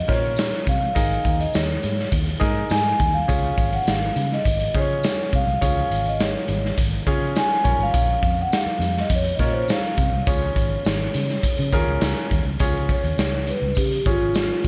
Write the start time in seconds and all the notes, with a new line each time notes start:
Already playing: D#5
0.07 A#2 C#4 F4 A#4 C5 C#5, kick, snare, closed hi-hat, tambourine
0.15 C#5
0.36 snare, closed hi-hat, tambourine
0.67 C3 F5, kick, closed hi-hat, tambourine
0.95 G#1 D#4 G#4 A#4 D#5, kick, closed hi-hat, tambourine
1.25 D#2, kick, closed hi-hat, tambourine
1.40 D#5, closed hi-hat
1.54 D#2 C#5, snare, closed hi-hat, tambourine
1.83 G#2, closed hi-hat, tambourine
1.99 snare
2.12 D#2, kick, closed hi-hat, tambourine
2.27 closed hi-hat
2.40 G#2 D#4 G#4 A#4 D#5, kick, snare, closed hi-hat, tambourine
2.70 G#2 G#5, snare, closed hi-hat, tambourine
2.99 D#2, kick, closed hi-hat, tambourine
3.14 F5
3.28 C#2 C#4 F4 G#4 C#5, kick, closed hi-hat, tambourine
3.58 G#1, kick, closed hi-hat, tambourine
3.72 F#5, closed hi-hat
3.87 G#1 F5, snare, closed hi-hat, tambourine
4.16 C#3, closed hi-hat, tambourine
4.32 D#5, snare
4.45 G#1, kick, closed hi-hat, tambourine
4.60 closed hi-hat
4.74 C#3 C#4 F4 G#4 C5 C#5, kick, closed hi-hat, tambourine
4.81 C#5
5.03 snare, closed hi-hat, tambourine
5.32 C3 F5, kick, closed hi-hat, tambourine
5.47 C2
5.61 C#2 C#4 F4 G#4 C#5, kick, closed hi-hat, tambourine
5.91 G#1, closed hi-hat, tambourine
6.05 D#5, closed hi-hat
6.20 C#5, snare, closed hi-hat, tambourine
6.48 G#1, closed hi-hat, tambourine
6.65 snare
6.77 G#1, kick, closed hi-hat, tambourine
7.07 C#3 C#4 F4 G#4 C#5, kick, closed hi-hat, tambourine
7.36 G#5, snare, closed hi-hat, tambourine
7.64 A#1 C#4 F4 A#4 C#5, kick, closed hi-hat, tambourine
7.78 G#1
7.83 F5
7.94 A#1, kick, closed hi-hat, tambourine
8.23 F2, kick, closed hi-hat, tambourine
8.41 F#5
8.52 snare, closed hi-hat, tambourine
8.57 F5
8.66 muted fingered electric bass stroke
8.79 F2, closed hi-hat, tambourine
8.97 D#5, snare
9.10 F2, kick, closed hi-hat, tambourine
9.15 C#5
9.25 closed hi-hat
9.35 A#2 D#5
9.39 C#4 F4 A#4 C#5, kick, snare, closed hi-hat, tambourine
9.52 C5
9.62 C#5
9.68 F5, snare, closed hi-hat, tambourine
9.98 C3, kick, closed hi-hat, tambourine
10.12 C2
10.27 C#2 C#4 F4 G#4 C#5, kick, closed hi-hat, tambourine
10.31 C#5
10.56 G#1, kick, closed hi-hat, tambourine
10.85 G#1, snare, closed hi-hat, tambourine
11.14 C#3, closed hi-hat, tambourine
11.30 snare
11.43 kick, closed hi-hat, tambourine
11.58 C#3, closed hi-hat
11.72 D#2 C#4 F4 G#4 A#4, kick, snare, closed hi-hat, tambourine
11.88 C#2
12.01 C#2, snare, closed hi-hat, tambourine
12.31 D#2, kick, closed hi-hat, tambourine
12.45 C#2
12.59 C#2 C#4 F4 G#4 C#5, kick, closed hi-hat, tambourine
12.89 C#5, kick, closed hi-hat, tambourine
13.03 D#2, closed hi-hat
13.18 C#2, snare, closed hi-hat, tambourine
13.47 B4, closed hi-hat, tambourine
13.62 C#2
13.75 C#3 G4, kick, closed hi-hat, tambourine
13.91 closed hi-hat
14.05 G#1 C#4 F4 G#4 C#5, kick, closed hi-hat, tambourine
14.34 snare, closed hi-hat, tambourine
14.64 C#2, kick, closed hi-hat, tambourine